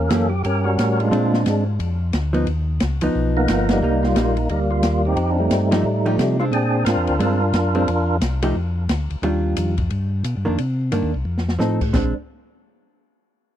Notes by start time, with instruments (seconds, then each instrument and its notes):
Already playing: tonewheel organ A#3 C#4 A#4
0.09 tonewheel organ F#2 A4, hollow-body jazz guitar E3 A#3 C#4 G4, snare, hi-hat pedal, ride
0.29 tonewheel organ G4
0.44 tonewheel organ G2 C#4 G4 A#4, ride
0.64 tonewheel organ G3 C#4 F#4
0.78 tonewheel organ A2, snare, hi-hat pedal, ride
1.00 tonewheel organ G#3 D4 F4, ride
1.11 tonewheel organ A#2, hollow-body jazz guitar G#3 C4 D4, ride
1.34 snare
1.46 tonewheel organ G#2, snare, hi-hat pedal, ride
1.79 tonewheel organ F2, ride
2.13 tonewheel organ D2, snare, hi-hat pedal, ride
2.33 hollow-body jazz guitar F3 B3 D#4, ride
2.47 tonewheel organ D#2, ride
2.80 tonewheel organ C#2, snare, hi-hat pedal, ride
3.01 tonewheel organ C#2, hollow-body jazz guitar F3 B3 D#4, ride
3.15 tonewheel organ B1
3.37 tonewheel organ A#3 B3 D#4
3.48 tonewheel organ G1, hollow-body jazz guitar F3 D#4, snare, hi-hat pedal, ride
3.69 tonewheel organ G3 A#3 D#4, snare, ride
3.83 tonewheel organ C2, hollow-body jazz guitar G3 A#3 D#4
4.03 tonewheel organ A#3 F4, snare
4.15 tonewheel organ A#1, hollow-body jazz guitar G3 A#3 D#4, snare, hi-hat pedal, ride
4.37 tonewheel organ D#4, ride
4.49 tonewheel organ D2 G3 A#3 D#4, ride
4.71 tonewheel organ A#3 F4
4.83 tonewheel organ D#2, snare, hi-hat pedal, ride
5.05 tonewheel organ C4 D#4 G4
5.16 tonewheel organ F2, ride
5.32 tonewheel organ D4
5.38 tonewheel organ G3 A3 D#4
5.51 tonewheel organ G2, snare, hi-hat pedal, ride
5.71 hollow-body jazz guitar F3 A3 D#4 G4, tonewheel organ G3 D#4, snare, ride
5.75 tonewheel organ A3
5.84 tonewheel organ A2
6.06 hollow-body jazz guitar F3 A3 D#4 G4, ride
6.19 tonewheel organ C3, snare, hi-hat pedal, ride
6.40 hollow-body jazz guitar G#3 C4 D4, tonewheel organ F4
6.52 tonewheel organ A#2 C4 D4 G#4, ride
6.85 tonewheel organ G#2 D4 F4 A#4, snare, hi-hat pedal, ride
6.97 tonewheel organ F2
7.07 tonewheel organ D2, ride
7.19 tonewheel organ G2, hollow-body jazz guitar G#3 C4 D4, ride
7.53 tonewheel organ F#2, snare, hi-hat pedal, ride
7.75 hollow-body jazz guitar G#3 C4 D4, ride
7.88 tonewheel organ F2, ride
8.21 tonewheel organ C2, snare, hi-hat pedal, ride
8.42 hollow-body jazz guitar F3 A3 D#4 G4, ride
8.56 tonewheel organ F2
8.89 tonewheel organ D2, snare, hi-hat pedal, ride
9.10 tonewheel organ D2, ride
9.22 tonewheel organ D#2, hollow-body jazz guitar D#3 G3 D4 F4, ride
9.56 tonewheel organ F2, hi-hat pedal, ride
9.78 kick, ride
9.90 tonewheel organ G2, ride
10.24 tonewheel organ B2, hi-hat pedal, ride
10.37 tonewheel organ G2
10.45 tonewheel organ F2, hollow-body jazz guitar D#3 A#3 D4
10.58 tonewheel organ C3, ride
10.92 tonewheel organ G2, hollow-body jazz guitar D#3 A#3 D4, hi-hat pedal, ride
11.03 tonewheel organ D#2
11.14 tonewheel organ C2
11.25 tonewheel organ F2
11.38 snare
11.49 snare
11.59 tonewheel organ A2, hollow-body jazz guitar F3 C4 D#4 A4, snare, hi-hat pedal
11.81 kick, crash
11.93 tonewheel organ A#1, hollow-body jazz guitar G#3 C4 D4, kick, snare, crash